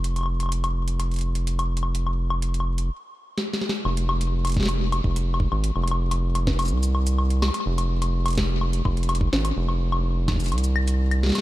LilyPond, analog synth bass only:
\new Staff \with { instrumentName = "Analog synth bass" } { \clef bass \time 4/4 \key f \minor \tempo 4 = 126 f,,1~ | f,,2 r2 | f,,2~ f,,8 f,,4 aes,,8 | f,,2 c,4. r8 |
f,,2~ f,,8 f,,4 aes,,8 | f,,2 c,4. r8 | }